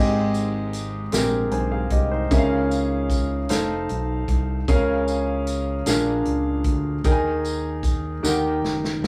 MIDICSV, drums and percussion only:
0, 0, Header, 1, 2, 480
1, 0, Start_track
1, 0, Key_signature, -4, "major"
1, 0, Tempo, 789474
1, 1403, Time_signature, 6, 3, 24, 8
1, 5515, End_track
2, 0, Start_track
2, 0, Title_t, "Drums"
2, 207, Note_on_c, 9, 42, 45
2, 211, Note_on_c, 9, 54, 46
2, 268, Note_off_c, 9, 42, 0
2, 272, Note_off_c, 9, 54, 0
2, 445, Note_on_c, 9, 42, 63
2, 453, Note_on_c, 9, 54, 42
2, 505, Note_off_c, 9, 42, 0
2, 513, Note_off_c, 9, 54, 0
2, 681, Note_on_c, 9, 42, 93
2, 693, Note_on_c, 9, 38, 90
2, 694, Note_on_c, 9, 54, 100
2, 742, Note_off_c, 9, 42, 0
2, 753, Note_off_c, 9, 38, 0
2, 755, Note_off_c, 9, 54, 0
2, 921, Note_on_c, 9, 42, 47
2, 981, Note_off_c, 9, 42, 0
2, 1156, Note_on_c, 9, 42, 65
2, 1160, Note_on_c, 9, 36, 76
2, 1217, Note_off_c, 9, 42, 0
2, 1221, Note_off_c, 9, 36, 0
2, 1404, Note_on_c, 9, 36, 108
2, 1406, Note_on_c, 9, 42, 65
2, 1407, Note_on_c, 9, 54, 56
2, 1465, Note_off_c, 9, 36, 0
2, 1467, Note_off_c, 9, 42, 0
2, 1467, Note_off_c, 9, 54, 0
2, 1649, Note_on_c, 9, 54, 45
2, 1650, Note_on_c, 9, 42, 43
2, 1710, Note_off_c, 9, 54, 0
2, 1711, Note_off_c, 9, 42, 0
2, 1883, Note_on_c, 9, 36, 80
2, 1885, Note_on_c, 9, 42, 64
2, 1891, Note_on_c, 9, 54, 43
2, 1943, Note_off_c, 9, 36, 0
2, 1946, Note_off_c, 9, 42, 0
2, 1952, Note_off_c, 9, 54, 0
2, 2122, Note_on_c, 9, 42, 98
2, 2134, Note_on_c, 9, 38, 88
2, 2134, Note_on_c, 9, 54, 105
2, 2183, Note_off_c, 9, 42, 0
2, 2194, Note_off_c, 9, 38, 0
2, 2195, Note_off_c, 9, 54, 0
2, 2366, Note_on_c, 9, 42, 46
2, 2426, Note_off_c, 9, 42, 0
2, 2603, Note_on_c, 9, 36, 76
2, 2605, Note_on_c, 9, 42, 61
2, 2664, Note_off_c, 9, 36, 0
2, 2666, Note_off_c, 9, 42, 0
2, 2847, Note_on_c, 9, 36, 110
2, 2849, Note_on_c, 9, 42, 62
2, 2850, Note_on_c, 9, 54, 55
2, 2907, Note_off_c, 9, 36, 0
2, 2910, Note_off_c, 9, 42, 0
2, 2910, Note_off_c, 9, 54, 0
2, 3087, Note_on_c, 9, 54, 44
2, 3089, Note_on_c, 9, 42, 44
2, 3147, Note_off_c, 9, 54, 0
2, 3150, Note_off_c, 9, 42, 0
2, 3325, Note_on_c, 9, 42, 66
2, 3325, Note_on_c, 9, 54, 43
2, 3386, Note_off_c, 9, 42, 0
2, 3386, Note_off_c, 9, 54, 0
2, 3563, Note_on_c, 9, 42, 95
2, 3569, Note_on_c, 9, 54, 105
2, 3574, Note_on_c, 9, 38, 90
2, 3623, Note_off_c, 9, 42, 0
2, 3630, Note_off_c, 9, 54, 0
2, 3635, Note_off_c, 9, 38, 0
2, 3802, Note_on_c, 9, 42, 46
2, 3863, Note_off_c, 9, 42, 0
2, 4037, Note_on_c, 9, 42, 66
2, 4040, Note_on_c, 9, 36, 75
2, 4098, Note_off_c, 9, 42, 0
2, 4101, Note_off_c, 9, 36, 0
2, 4281, Note_on_c, 9, 42, 67
2, 4283, Note_on_c, 9, 36, 108
2, 4284, Note_on_c, 9, 54, 54
2, 4342, Note_off_c, 9, 42, 0
2, 4344, Note_off_c, 9, 36, 0
2, 4345, Note_off_c, 9, 54, 0
2, 4526, Note_on_c, 9, 42, 41
2, 4532, Note_on_c, 9, 54, 46
2, 4587, Note_off_c, 9, 42, 0
2, 4593, Note_off_c, 9, 54, 0
2, 4761, Note_on_c, 9, 36, 86
2, 4766, Note_on_c, 9, 42, 63
2, 4770, Note_on_c, 9, 54, 41
2, 4822, Note_off_c, 9, 36, 0
2, 4826, Note_off_c, 9, 42, 0
2, 4831, Note_off_c, 9, 54, 0
2, 5013, Note_on_c, 9, 54, 100
2, 5015, Note_on_c, 9, 38, 56
2, 5074, Note_off_c, 9, 54, 0
2, 5076, Note_off_c, 9, 38, 0
2, 5256, Note_on_c, 9, 38, 70
2, 5317, Note_off_c, 9, 38, 0
2, 5378, Note_on_c, 9, 38, 64
2, 5439, Note_off_c, 9, 38, 0
2, 5515, End_track
0, 0, End_of_file